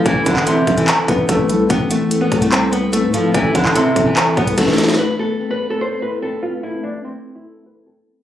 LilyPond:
<<
  \new Staff \with { instrumentName = "Tine electric piano" } { \time 4/4 \key a \minor \tempo 4 = 146 <c' e' a' b' c''>8 e'8 a'4 c''8 b'8 a'8 e'8 | c'8 e'8 a'4 c''8 b'8 a'8 e'8 | c'8 e'8 a'4 c''8 b'8 a'8 e'8 | a8 b8 c'4 a'8 e'8 c'8 b'8 |
a4 c'4 a'8 e'8 c'8 b8 | }
  \new Staff \with { instrumentName = "Nylon-string guitar" } { \time 4/4 \key a \minor e8 d8 c8. e8. b8 a4 | b8 a8. b8 a16 c'8 b8 a8 f8 | e8 d8 c8. e8. b8 a4 | b'8 a'8. b'8 a'16 c''8 b'8 a'8 f'8 |
e'8 d'8 c'8. e'8. b'8 a'4 | }
  \new Staff \with { instrumentName = "808-style bass" } { \clef bass \time 4/4 \key a \minor a,,8 a,,4 a,,8 r8 a,,8 a,,8 c,8 | a,,4. c,4.~ c,16 a,8. | a,,8 a,,8 r8 a,,4 c,8 a,,4 | r1 |
r1 | }
  \new DrumStaff \with { instrumentName = "Drums" } \drummode { \time 4/4 <hh bd>8 <hh bd>16 hc16 hh8 <hh bd>16 hh16 <hc hh>8 <hh bd>8 <hh bd>8 hh8 | <hh bd>8 hh8 hh8 <hh bd>16 hh16 <hc hh>8 hh8 hh8 hh8 | <hh bd>8 <hh bd>16 hc16 hh8 <hh bd>8 <hc hh>8 <hh bd>16 hh16 <hh bd sn>32 sn32 sn32 sn32 <hh sn>32 sn32 sn32 sn32 | r4 r4 r4 r4 |
r4 r4 r4 r4 | }
>>